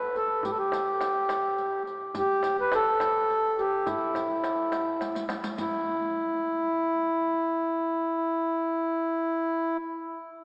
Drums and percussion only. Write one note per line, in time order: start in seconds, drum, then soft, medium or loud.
0.15 riq soft
0.15 tombak ka soft
0.43 riq medium
0.43 tombak dum medium
0.72 riq medium
0.72 tombak tek medium
1.01 riq medium
1.01 tombak tek medium
1.29 riq soft
1.29 tombak tek medium
1.58 riq soft
1.86 riq soft
1.86 tombak ka soft
2.14 riq medium
2.14 tombak dum medium
2.43 riq medium
2.43 tombak tek medium
2.72 riq soft
2.72 tombak tek medium
3.00 riq soft
3.00 tombak tek medium
3.30 riq soft
3.59 riq soft
3.86 riq soft
3.86 tombak dum medium
4.15 riq soft
4.15 tombak tek medium
4.44 riq soft
4.44 tombak tek medium
4.72 riq soft
4.72 tombak tek medium
5.01 riq medium
5.01 tombak tek medium
5.15 riq medium
5.15 tombak ka medium
5.29 riq medium
5.29 tombak tek medium
5.44 riq medium
5.44 tombak ka medium
5.58 riq medium
5.58 tombak dum medium